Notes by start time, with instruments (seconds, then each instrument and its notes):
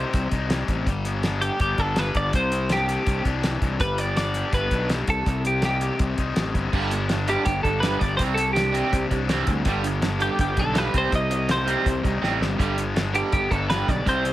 Already playing: distorted electric guitar C3 G3 C4 D#4 G4, clean electric guitar C5
0.13 fingered electric bass C2, distorted electric guitar C4, kick, closed hi-hat
0.31 fingered electric bass C2, distorted electric guitar D#4, kick, closed hi-hat
0.50 distorted electric guitar G3, snare, closed hi-hat
0.68 fingered electric bass A1, distorted electric guitar C4, kick, closed hi-hat
0.86 fingered electric bass G1, distorted electric guitar G3, kick, closed hi-hat
1.05 distorted electric guitar B3, closed hi-hat
1.23 distorted electric guitar D4, snare, closed hi-hat
1.41 distorted electric guitar G4, clean electric guitar G4, closed hi-hat
1.60 fingered electric bass G1, distorted electric guitar B3, clean electric guitar G4, kick, closed hi-hat
1.78 fingered electric bass G1, distorted electric guitar D4, clean electric guitar A4, kick, closed hi-hat
1.96 distorted electric guitar G3, clean electric guitar B4, snare, closed hi-hat
2.15 fingered electric bass G1, distorted electric guitar B3, clean electric guitar D5, kick, closed hi-hat
2.33 fingered electric bass C2, distorted electric guitar C3, clean electric guitar C5, kick, closed hi-hat
2.52 distorted electric guitar C4, closed hi-hat
2.69 distorted electric guitar D4, clean electric guitar G4, snare, closed hi-hat
2.88 distorted electric guitar G4, closed hi-hat
3.06 fingered electric bass C2, distorted electric guitar C4, kick, closed hi-hat
3.25 fingered electric bass C2, distorted electric guitar D4, kick, closed hi-hat
3.43 distorted electric guitar E3, snare, closed hi-hat
3.62 fingered electric bass C2, distorted electric guitar C4, kick, closed hi-hat
3.80 fingered electric bass G1, distorted electric guitar G3, clean electric guitar B4, kick, closed hi-hat
3.98 distorted electric guitar B3, clean electric guitar D5, closed hi-hat
4.16 distorted electric guitar D4, clean electric guitar D5, snare, closed hi-hat
4.34 distorted electric guitar G4, closed hi-hat
4.52 fingered electric bass G1, distorted electric guitar B3, clean electric guitar B4, kick, closed hi-hat
4.71 fingered electric bass B1, distorted electric guitar D4, kick, closed hi-hat
4.90 distorted electric guitar G3, snare, closed hi-hat
5.07 fingered electric bass C2, distorted electric guitar C3, clean electric guitar A4, kick, closed hi-hat
5.26 fingered electric bass C2, distorted electric guitar C3, kick, closed hi-hat
5.45 distorted electric guitar C4, clean electric guitar G4, closed hi-hat
5.62 distorted electric guitar D#4, clean electric guitar G4, snare, closed hi-hat
5.81 distorted electric guitar G4, closed hi-hat
5.99 fingered electric bass C2, distorted electric guitar C4, kick, closed hi-hat
6.18 fingered electric bass C2, distorted electric guitar D#4, kick, closed hi-hat
6.36 fingered electric bass A1, distorted electric guitar G3, snare, closed hi-hat
6.55 fingered electric bass G1, distorted electric guitar C4, kick, closed hi-hat
6.73 fingered electric bass G1, overdriven electric guitar G2 D3 G3, distorted electric guitar G3, kick, crash
6.91 overdriven electric guitar G2 D3, distorted electric guitar B3, closed hi-hat
7.09 overdriven electric guitar G2 D3, distorted electric guitar D4, snare, closed hi-hat
7.27 overdriven electric guitar G2 D3 G3, distorted electric guitar G4, clean electric guitar G4, closed hi-hat
7.45 fingered electric bass G1, overdriven electric guitar G2 D3, distorted electric guitar B3, clean electric guitar G4, kick, closed hi-hat
7.63 fingered electric bass G1, overdriven electric guitar G2 D3, distorted electric guitar D4, clean electric guitar A4, kick, closed hi-hat
7.80 overdriven electric guitar G2 D3 G3, distorted electric guitar G3, clean electric guitar B4, snare, closed hi-hat
7.99 fingered electric bass G1, overdriven electric guitar G2 D3, distorted electric guitar B3, clean electric guitar D5, kick, closed hi-hat
8.17 fingered electric bass C2, overdriven electric guitar C3 G3 C4, distorted electric guitar C3, clean electric guitar C5, kick, closed hi-hat
8.34 overdriven electric guitar C3 G3, distorted electric guitar C4, clean electric guitar A4, closed hi-hat
8.53 overdriven electric guitar C3 G3, distorted electric guitar D4, clean electric guitar G4, snare, closed hi-hat
8.72 overdriven electric guitar C3 G3 C4, distorted electric guitar G4, closed hi-hat
8.92 fingered electric bass C2, overdriven electric guitar C3 G3, distorted electric guitar C4, kick, closed hi-hat
9.10 fingered electric bass C2, overdriven electric guitar C3 G3, distorted electric guitar D4, kick, closed hi-hat
9.29 overdriven electric guitar C3 G3 C4, distorted electric guitar E3, snare, closed hi-hat
9.47 fingered electric bass D2, overdriven electric guitar C3 G3, distorted electric guitar C4, kick, closed hi-hat
9.65 fingered electric bass G1, overdriven electric guitar G2 D3 G3, distorted electric guitar G3, kick, closed hi-hat
9.82 overdriven electric guitar G2 D3, distorted electric guitar B3, closed hi-hat
10.02 overdriven electric guitar G2 D3, distorted electric guitar D4, snare, closed hi-hat
10.19 overdriven electric guitar G2 D3 G3, clean electric guitar G4, distorted electric guitar G4, closed hi-hat
10.38 fingered electric bass G1, overdriven electric guitar G2 D3, distorted electric guitar B3, clean electric guitar G4, kick, closed hi-hat
10.56 fingered electric bass B1, overdriven electric guitar G2 D3, distorted electric guitar D4, clean electric guitar A4, kick, closed hi-hat
10.72 overdriven electric guitar G2 D3 G3, snare, closed hi-hat
10.77 distorted electric guitar G3, clean electric guitar B4
10.93 fingered electric bass C2, overdriven electric guitar C3 G3 C4, distorted electric guitar C3, kick, closed hi-hat
10.98 clean electric guitar C5
11.12 fingered electric bass C2, overdriven electric guitar C3 G3, distorted electric guitar C3, clean electric guitar D#5, kick, closed hi-hat
11.30 overdriven electric guitar C3 G3, distorted electric guitar C4, closed hi-hat
11.48 overdriven electric guitar C3 G3, distorted electric guitar D#4, clean electric guitar C5, snare, closed hi-hat
11.66 overdriven electric guitar C3 G3 C4, distorted electric guitar G4, closed hi-hat
11.84 fingered electric bass C2, overdriven electric guitar C3 G3, distorted electric guitar C4, kick, closed hi-hat
12.03 fingered electric bass C2, overdriven electric guitar C3 G3, distorted electric guitar D#4, kick, closed hi-hat
12.22 fingered electric bass A1, overdriven electric guitar C3 G3 C4, distorted electric guitar G3, snare
12.40 fingered electric bass G1, overdriven electric guitar C3 G3, distorted electric guitar C4, snare
12.58 fingered electric bass G1, overdriven electric guitar G2 D3 G3, distorted electric guitar G3, kick, closed hi-hat
12.77 overdriven electric guitar G2 D3, distorted electric guitar B3, closed hi-hat
12.95 overdriven electric guitar G2 D3, distorted electric guitar D4, snare, closed hi-hat
13.14 overdriven electric guitar G2 D3 G3, distorted electric guitar G4, clean electric guitar G4, closed hi-hat
13.31 fingered electric bass G1, overdriven electric guitar G2 D3, distorted electric guitar B3, clean electric guitar G4, kick, closed hi-hat
13.51 fingered electric bass G1, overdriven electric guitar G2 D3, distorted electric guitar D4, clean electric guitar A4, kick, closed hi-hat
13.69 overdriven electric guitar G2 D3 G3, distorted electric guitar G3, clean electric guitar B4, snare, closed hi-hat
13.88 fingered electric bass B1, overdriven electric guitar G2 D3, distorted electric guitar B3, clean electric guitar D5, kick, closed hi-hat
14.06 fingered electric bass C2, overdriven electric guitar C3 G3 C4, distorted electric guitar C3, clean electric guitar C5, kick, closed hi-hat
14.25 overdriven electric guitar C3 G3, distorted electric guitar C4, closed hi-hat